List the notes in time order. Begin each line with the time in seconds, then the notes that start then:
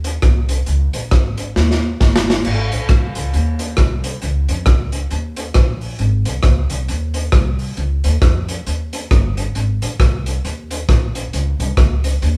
Already playing: D#2
0.04 closed hi-hat
0.22 C2, kick, cross-stick, closed hi-hat
0.49 closed hi-hat
0.66 C#2, closed hi-hat
0.93 A#1, closed hi-hat
1.11 G#1, kick, cross-stick, closed hi-hat
1.37 closed hi-hat
1.56 D#2, snare
1.71 snare
2.00 G1, kick, snare
2.16 snare
2.30 snare
2.45 G#1, crash
2.72 A#1, closed hi-hat
2.89 C2, kick, cross-stick, closed hi-hat
3.15 C#2, closed hi-hat
3.33 D#2, closed hi-hat
3.59 closed hi-hat
3.77 C2, kick, cross-stick, closed hi-hat
4.04 closed hi-hat
4.22 C#2, closed hi-hat
4.49 F2, closed hi-hat
4.66 C#2, kick, cross-stick, closed hi-hat
4.92 closed hi-hat
5.11 D#2, closed hi-hat
5.36 closed hi-hat
5.54 A#1, kick, cross-stick, closed hi-hat
5.81 open hi-hat
5.99 G#1, closed hi-hat
6.25 C2, closed hi-hat
6.43 C#2, kick, cross-stick, closed hi-hat
6.70 C2, closed hi-hat
6.88 D#2, closed hi-hat
7.14 closed hi-hat
7.32 C2, kick, cross-stick, closed hi-hat
7.59 open hi-hat
7.77 C#2, closed hi-hat
8.04 D#2, closed hi-hat
8.22 F2, kick, cross-stick, closed hi-hat
8.48 closed hi-hat
8.66 D#2, closed hi-hat
8.93 closed hi-hat
9.11 G1, kick, cross-stick, closed hi-hat
9.37 closed hi-hat
9.55 G#1, closed hi-hat
9.82 A#1, closed hi-hat
10.00 C2, kick, cross-stick, closed hi-hat
10.26 closed hi-hat
10.45 D#2, closed hi-hat
10.71 closed hi-hat
10.89 A#1, kick, cross-stick, closed hi-hat
11.15 closed hi-hat
11.33 C#2, closed hi-hat
11.59 C2, closed hi-hat
11.77 C#2, kick, cross-stick, closed hi-hat
12.04 closed hi-hat
12.22 D#2, closed hi-hat